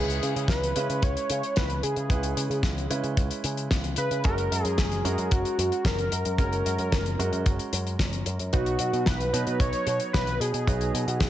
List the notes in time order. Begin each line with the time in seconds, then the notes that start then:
Already playing: C#2 G#3 C#4 E4 G#4 B4
0.10 closed hi-hat
0.23 C#3, closed hi-hat
0.36 C#3, closed hi-hat
0.48 C#2 B4, kick, snare, closed hi-hat
0.63 closed hi-hat
0.76 C#3 G#3 C#4 E4 B4, closed hi-hat
0.90 C#3, closed hi-hat
1.02 C#2 C#5, kick, closed hi-hat
1.17 closed hi-hat
1.30 C#3, closed hi-hat
1.43 closed hi-hat
1.56 C#2 B4, kick, snare, closed hi-hat
1.70 closed hi-hat
1.83 C#3 G#4, closed hi-hat
1.96 C#3, closed hi-hat
2.10 C#2 G#3 C#4 E4 B4, kick, closed hi-hat
2.23 closed hi-hat
2.37 C#3, closed hi-hat
2.50 C#3, closed hi-hat
2.63 C#2, kick, snare, closed hi-hat
2.78 closed hi-hat
2.90 C#3 G#3 C#4 E4 B4, closed hi-hat
3.04 C#3, closed hi-hat
3.17 C#2, kick, closed hi-hat
3.31 closed hi-hat
3.44 C#3, closed hi-hat
3.57 closed hi-hat
3.71 C#2, kick, snare, closed hi-hat
3.84 closed hi-hat
3.96 C#3 B4, closed hi-hat
4.11 C#3, closed hi-hat
4.24 F#1 G#3 C#4 F#4 A#4, kick, closed hi-hat
4.38 closed hi-hat
4.51 F#2, closed hi-hat
4.64 F#2 G#4, closed hi-hat
4.78 F#1 G#4, kick, snare, closed hi-hat
4.92 closed hi-hat
5.05 F#2 G#3 C#4 F#4 A#4, closed hi-hat
5.18 F#2, closed hi-hat
5.31 F#1 F#4, kick, closed hi-hat
5.45 closed hi-hat
5.59 F#2, closed hi-hat
5.72 closed hi-hat
5.85 F#1 A#4, kick, snare, closed hi-hat
5.98 closed hi-hat
6.12 F#2, closed hi-hat
6.25 F#2, closed hi-hat
6.38 F#1 G#3 C#4 F#4 A#4, kick, closed hi-hat
6.53 closed hi-hat
6.66 F#2, closed hi-hat
6.78 F#2, closed hi-hat
6.92 F#1, kick, snare, closed hi-hat
7.06 closed hi-hat
7.19 F#2 G#3 C#4 F#4 A#4, closed hi-hat
7.33 F#2, closed hi-hat
7.46 F#1, kick, closed hi-hat
7.59 closed hi-hat
7.73 F#2, closed hi-hat
7.87 closed hi-hat
7.99 F#1, kick, snare, closed hi-hat
8.13 closed hi-hat
8.26 F#2, closed hi-hat
8.39 F#2, closed hi-hat
8.53 B1 F#3 B3 D#4 F#4 B4, kick, closed hi-hat
8.66 closed hi-hat
8.79 B2, closed hi-hat
8.93 B2, closed hi-hat
9.06 B1 B4, kick, snare, closed hi-hat
9.20 closed hi-hat
9.33 B2 F#3 B3 D#4 B4, closed hi-hat
9.47 B2, closed hi-hat
9.60 B1 C#5, kick, closed hi-hat
9.73 closed hi-hat
9.87 B2, closed hi-hat
10.00 closed hi-hat
10.13 B1 B4, kick, snare, closed hi-hat
10.27 closed hi-hat
10.40 B2 G#4, closed hi-hat
10.54 B2, closed hi-hat
10.67 B1 F#3 B3 D#4 B4, kick, closed hi-hat
10.81 closed hi-hat
10.94 B2, closed hi-hat
11.07 B2, closed hi-hat
11.20 B1, kick, snare, closed hi-hat